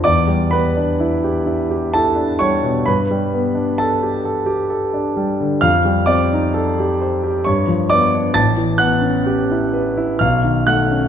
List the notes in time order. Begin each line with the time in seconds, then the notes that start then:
0.04 E2 D5 D6
0.27 G3
0.51 B3 B4 B5
0.76 D4
1.00 E4
1.24 G4
1.46 E4
1.71 G4
1.94 E4 A4 A5
2.16 D4
2.39 G3 C#5 C#6
2.63 B2
2.86 G2 B4 B5
3.11 G3
3.34 B3
3.55 D4
3.78 A4 A5
4.03 G4
4.25 A4
4.46 G4
4.70 A4
4.94 D4
5.16 G3
5.40 D3
5.61 F2 F5 F6
5.85 G3
6.06 C4 D5 D6
6.33 D#4
6.54 A4
6.80 G4
7.01 C5
7.24 G4
7.45 G2 C#5 C#6
7.67 F3
7.90 B3 D5 D6
8.15 D4
8.34 A1 A5 A6
8.57 E3
8.78 B3 F#5 F#6
9.01 C#4
9.26 G4
9.51 E4
9.73 B4
9.97 E4
10.19 B1 F5 F6
10.44 D#3
10.67 A3 F#5 F#6
10.91 C#4